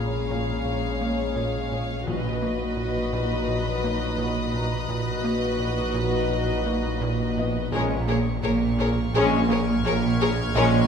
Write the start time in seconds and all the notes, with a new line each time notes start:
Already playing: A#1 A#2 G#3 C#4 G#4 C#5 F5 A#5 B5 F6
0.31 A#2
0.65 A#2
1.01 A#3
1.36 A#2
1.72 A#2
2.06 A#1 A#2 F#3 D#4 F#4 B4 D#5 B5
2.42 A#3
2.77 A#2 D#6
3.13 A#2
3.48 A#2 F#6
3.84 A#3
4.18 A#2
4.54 A#2 A#5
4.89 A#1 A#2 F#3 D#4 F#4 B4 D#5
5.24 A#3
5.60 A#2
5.94 A#2
6.30 A#2
6.66 A#3
7.01 A#2
7.38 A#2 B3 D#5
7.72 A#1 A#2 G#3 C#4 G#4 A#4 C#5 C#6
8.08 A#3 G#4 A#4 C#5
8.43 A#1 A#2 G#4 A#4 C#5 F6
8.78 A#2 G#4 A#4 C#5
9.14 A#1 A#2 G#3 C#4 G#4 A#4 C#5 G#6
9.49 A#3 G#4 A#4 C#5
9.84 A#1 A#2 G#4 A#4 C#5
10.20 A#2 G#4 A#4 C#5
10.55 A#1 A#2 G#3 C#4 G#4 A#4 C#5 D#5